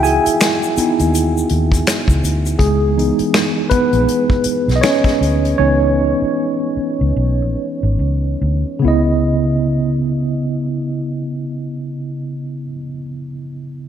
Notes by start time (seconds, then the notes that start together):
Already playing: C#2 E3 B3 D#4 E4 F#4 G#4 E5 F5 F#5 G5 G#5
0.03 G#4 G#5, closed hi-hat, shaker
0.26 muted fingered electric bass stroke, closed hi-hat, shaker
0.41 finger snap, snare, closed hi-hat, shaker
0.63 shaker
0.77 B3 D#4 E4, muted fingered electric bass stroke, closed hi-hat, shaker
0.99 D#2, closed hi-hat, shaker
1.15 closed hi-hat, shaker
1.38 shaker
1.49 D#2, closed hi-hat
1.72 kick, closed hi-hat, shaker
1.87 finger snap, snare, closed hi-hat, shaker
2.08 C#2, kick, shaker
2.24 D2, closed hi-hat, shaker
2.46 closed hi-hat, shaker
2.59 C#2 G#3 G#4, kick, closed hi-hat
2.97 E3 B3 D#4, closed hi-hat
3.19 muted fingered electric bass stroke, closed hi-hat
3.34 finger snap, snare, closed hi-hat
3.70 B3 B4, muted fingered electric bass stroke, kick, closed hi-hat
3.93 A#1, closed hi-hat
4.08 closed hi-hat
4.30 kick
4.44 muted fingered electric bass stroke, closed hi-hat
4.68 B1, snare, closed hi-hat
4.76 D#5
4.81 C#4 C#5, finger snap, snare, closed hi-hat
5.04 kick, snare, closed hi-hat
5.21 D2, closed hi-hat
5.45 closed hi-hat
5.58 C#2 E3 B3 C#4 D#4 C#5
6.22 muted fingered electric bass stroke
6.77 muted fingered electric bass stroke
7.01 C#2
7.16 B1
7.42 A#1
7.83 G#1
7.99 C#2
8.42 D2
8.79 C#3 B3
8.84 C#2 E4 D#5